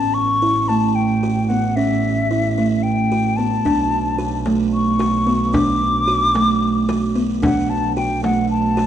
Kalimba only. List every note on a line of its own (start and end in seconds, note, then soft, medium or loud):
0.00 0.20 C#4 medium
0.42 0.58 E4 medium
0.69 1.01 A3 medium
1.23 1.39 F#4 medium
1.50 1.66 B3 medium
1.77 2.09 C#4 medium
2.31 2.47 E4 medium
2.58 2.89 A3 medium
3.12 3.27 F#4 medium
3.38 3.54 B3 medium
3.65 3.97 D4 medium
4.19 4.35 F#4 medium
4.46 4.77 A3 medium
4.99 5.15 F#4 medium
5.27 5.43 B3 medium
5.54 5.85 D4 medium
6.07 6.23 F#4 medium
6.34 6.66 A3 medium
6.89 7.05 F#4 medium
7.15 7.31 B3 medium
7.42 7.74 D4 medium
7.97 8.13 F#4 medium
8.24 8.55 A3 medium
8.77 8.87 F#4 medium